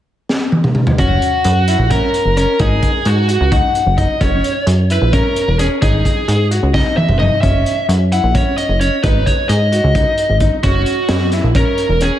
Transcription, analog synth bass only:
0.98 1.20 F#1 medium
1.45 1.77 F#2 medium
1.79 2.00 A#1 medium
2.25 2.46 F#1 medium
2.60 2.81 G#1 medium
3.06 3.38 G#2 medium
3.41 3.62 C#2 medium
3.86 4.08 F#1 medium
4.21 4.42 F#1 medium
4.67 4.99 F#2 medium
5.02 5.23 A#1 medium
5.48 5.69 E1 medium
5.82 6.03 G#1 medium
6.28 6.60 G#2 medium
6.63 6.84 C#2 medium
7.09 7.30 F#1 medium
7.43 7.64 F#1 medium
7.89 8.20 F#2 medium
8.24 8.44 A#1 medium
8.69 8.90 F#1 medium
9.04 9.25 G#1 medium
9.49 9.81 G#2 medium
9.84 10.05 C#2 medium
10.30 10.50 G#1 medium
10.64 10.85 F#1 medium
11.09 11.41 F#2 medium
11.44 11.65 A#1 medium
11.89 12.10 E1 medium

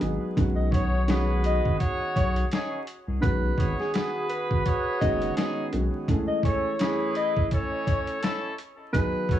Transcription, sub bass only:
0.02 0.18 G#1 medium
0.37 1.60 B1 loud
1.65 1.77 G#1 loud
2.16 2.44 B1 medium
3.08 3.20 C2 medium
3.23 3.51 B1 loud
3.58 3.74 G#1 loud
4.51 4.63 G#1 medium
5.02 5.30 F#1 medium
5.73 5.89 B1 medium

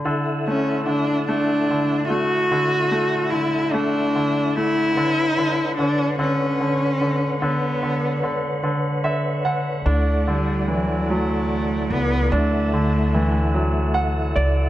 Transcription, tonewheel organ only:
0.05 4.92 E4 medium
0.05 4.92 A4 soft
0.05 4.93 E5 soft
0.05 14.69 F#5 medium
4.95 9.82 D3 medium
4.95 9.82 B4 soft
4.95 9.82 C#5 medium
9.86 14.69 E4 medium
9.86 14.69 A4 soft
9.86 12.29 D5 soft
12.33 14.69 E5 soft

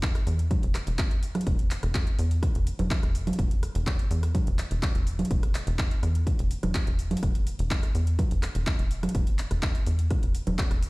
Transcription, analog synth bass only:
0.00 0.20 E1 loud
0.27 0.56 E2 medium
0.63 0.78 E1 loud
0.87 1.13 E1 medium
1.11 1.19 E2 medium
1.47 1.76 E1 loud
1.83 2.12 E1 loud
2.19 2.48 E2 medium
2.55 2.70 E1 loud
2.79 2.94 E1 medium
3.03 3.32 E1 loud
3.39 3.68 E1 loud
3.75 4.04 E1 loud
4.11 4.40 E2 medium
4.47 4.62 E1 loud
4.71 4.86 E1 medium
4.95 5.24 E1 loud
5.31 5.60 E1 loud
5.67 5.96 E1 loud
6.03 6.32 E2 medium
6.39 6.54 E1 loud
6.63 6.79 E1 medium
6.87 7.16 E1 loud
7.23 7.52 E1 loud
7.59 7.88 E1 loud
7.95 8.24 E2 medium
8.31 8.46 E1 loud
8.55 8.70 E1 medium
8.79 9.08 E1 medium
9.15 9.44 E1 loud
9.51 9.80 E1 loud
9.87 10.16 E2 medium
10.23 10.38 E1 loud
10.47 10.62 E1 medium
10.71 10.90 E1 loud

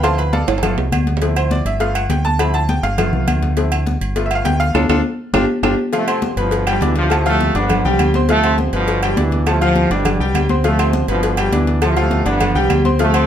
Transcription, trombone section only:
5.95 6.49 C3 medium
5.95 6.38 F3 medium
5.95 6.21 A3 medium
6.39 6.93 B2 medium
6.39 6.93 D3 medium
6.39 6.66 F3 medium
6.69 6.75 F3 medium
6.83 6.96 E3 medium
6.98 7.52 A2 medium
6.98 7.27 C3 medium
6.98 7.24 F3 loud
7.28 7.68 C3 medium
7.28 7.56 F3 medium
7.28 7.54 A3 loud
7.57 8.11 D3 medium
7.57 8.11 F3 medium
7.57 7.97 B3 loud
8.30 8.85 C3 medium
8.30 8.73 F3 medium
8.30 8.57 A3 loud
8.74 9.18 B2 medium
8.74 9.29 D3 medium
8.74 9.01 F3 loud
9.04 9.10 F3 medium
9.19 9.46 B2 medium
9.19 9.45 E3 medium
9.48 9.63 A2 medium
9.48 9.63 C3 medium
9.48 9.61 F3 medium
9.63 10.04 A2 medium
9.63 10.04 C3 medium
9.63 9.89 F3 loud
9.92 10.46 B2 medium
9.92 10.47 D3 medium
9.92 10.32 G3 medium
10.65 11.20 C3 medium
10.65 11.09 F3 medium
10.65 10.92 A3 loud
11.10 11.53 B2 medium
11.10 11.64 D3 medium
11.10 11.37 F3 medium
11.39 11.52 F3 medium
11.54 11.81 B2 medium
11.54 11.80 E3 medium
11.83 12.38 A2 medium
11.83 11.97 C3 medium
11.83 11.96 F3 loud
11.98 12.39 C3 medium
11.98 12.26 F3 medium
11.98 12.27 A3 loud
12.27 12.82 D3 medium
12.27 12.82 F3 medium
12.27 12.68 B3 loud
13.01 13.27 C3 medium
13.01 13.27 F3 medium
13.01 13.27 A3 loud

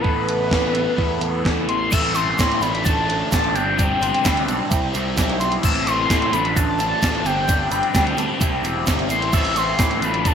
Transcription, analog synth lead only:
0.01 1.43 B4 loud
1.69 1.93 C6 loud
1.91 2.16 E6 loud
2.15 2.63 C6 loud
2.61 2.84 B5 loud
2.85 3.07 A5 loud
3.08 3.56 A5 medium
3.55 4.48 G5 medium
5.40 5.50 C6 loud
5.65 5.88 E6 loud
5.86 6.34 C6 loud
6.33 6.57 B5 loud
6.56 6.78 A5 medium
6.78 7.27 A5 loud
7.26 8.18 G5 medium
9.11 9.32 C6 loud
9.34 9.58 E6 loud
9.57 10.05 C6 loud
10.04 10.29 B5 medium
10.27 10.34 A5 loud

